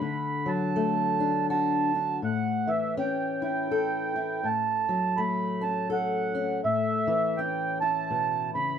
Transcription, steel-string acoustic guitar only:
0.00 2.19 D3 medium
0.00 0.75 A3 soft
0.46 2.19 F#3 medium
0.76 2.97 A3 medium
1.20 1.94 D4 medium
1.50 2.20 F#4 medium
1.95 2.20 D4 soft
2.22 4.43 A2 medium
2.67 4.43 E3 medium
2.97 5.17 C#4 medium
3.42 4.15 E4 medium
3.71 5.89 A4 medium
4.16 4.41 E4 soft
4.43 6.60 A2 medium
4.89 6.60 F#3 medium
5.18 7.38 A3 medium
5.61 6.33 C#4 medium
5.90 8.13 A4 medium
6.35 6.60 C#4 medium
6.64 8.79 A2 medium
7.07 8.79 E3 medium
7.39 8.79 C#4 soft
7.82 8.79 E4 medium
8.10 8.55 B2 medium
8.55 8.79 C#3 medium

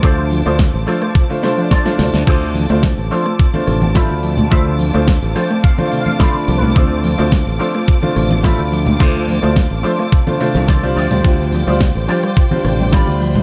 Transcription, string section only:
0.00 2.23 F4 medium
0.00 2.23 C5 medium
0.00 10.92 A5 medium
0.00 2.23 D6 medium
2.27 10.92 C4 medium
2.27 13.43 F4 medium
2.27 13.17 D6 medium
10.96 13.43 C5 medium
10.96 13.43 G5 medium
13.21 13.43 C6 medium

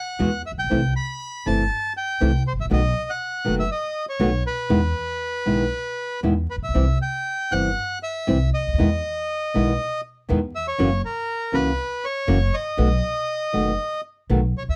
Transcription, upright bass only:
0.20 0.41 E2 medium
0.51 0.57 A1 soft
0.58 0.63 A#1 soft
0.64 0.70 B1 medium
0.71 0.92 C2 medium
1.46 1.67 G1 medium
2.21 2.42 C2 medium
2.53 2.59 G#1 soft
2.59 2.64 A1 medium
2.65 2.71 A#1 medium
2.71 2.92 B1 medium
3.46 3.67 F#1 medium
4.20 4.41 B1 medium
4.70 4.92 E2 medium
5.46 5.68 B1 soft
6.23 6.45 E2 medium
6.56 6.62 A1 soft
6.62 6.68 A#1 soft
6.68 6.74 B1 medium
6.75 6.96 C2 medium
7.52 7.73 G1 medium
8.28 8.49 C2 medium
8.60 8.66 C#2 soft
8.67 8.73 D2 soft
8.73 8.79 D#2 medium
8.80 9.00 E2 medium
9.55 9.76 B1 medium
10.30 10.51 E2 medium
10.80 11.00 F#1 medium
11.53 11.74 C#2 medium
12.28 12.49 F#1 medium
12.78 12.99 B1 medium
13.54 13.75 F#1 soft
14.30 14.52 B1 medium
14.62 14.68 C#2 soft
14.68 14.74 D2 soft

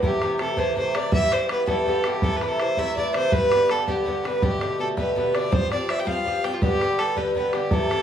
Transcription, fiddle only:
0.04 0.38 G4 medium
0.40 0.60 A4 medium
0.58 0.77 C5 medium
0.78 0.97 C5 medium
0.95 1.13 D5 medium
1.13 1.34 E5 loud
1.33 1.50 C5 medium
1.51 1.67 B4 medium
1.69 2.08 A4 medium
2.06 2.25 G4 medium
2.23 2.37 A4 loud
2.36 2.50 B4 medium
2.48 2.62 A4 medium
2.60 2.80 C5 medium
2.78 2.96 E5 medium
2.97 3.13 D5 medium
3.15 3.33 C5 loud
3.32 3.72 B4 loud
3.71 3.87 A4 medium
3.87 4.27 G4 medium
4.26 4.44 B4 medium
4.43 4.79 G4 medium
4.80 4.88 A4 medium
4.98 5.15 B4 medium
5.18 5.36 B4 medium
5.35 5.55 D5 medium
5.54 5.71 C5 loud
5.72 5.91 D5 medium
5.90 6.01 E5 medium
6.00 6.08 G5 medium
6.07 6.45 F5 medium
6.44 6.55 G5 medium
6.53 6.63 F4 medium
6.61 7.00 G4 loud
6.99 7.18 A4 medium
7.17 7.36 B4 medium
7.36 7.55 B4 medium
7.53 7.73 G4 medium
7.72 8.02 A4 loud

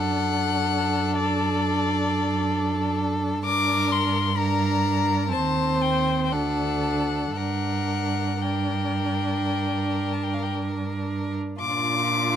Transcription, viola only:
0.00 3.42 D4 soft
3.47 4.34 D4 soft
4.39 5.32 D4 soft
5.33 6.33 C4 soft
6.32 7.37 D4 soft
7.37 8.41 D4 soft
8.43 11.35 D4 soft
11.59 12.36 D4 medium

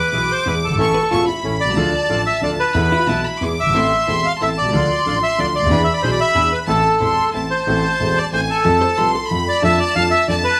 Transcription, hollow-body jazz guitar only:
0.94 0.98 B4 medium
1.03 1.12 A4 medium
1.11 1.28 F4 medium
1.28 1.53 E4 medium
2.92 2.99 E4 medium
2.99 3.08 F4 medium
3.09 3.47 E4 medium
8.81 8.98 C5 loud
8.98 9.15 B4 medium
9.15 9.38 A4 medium

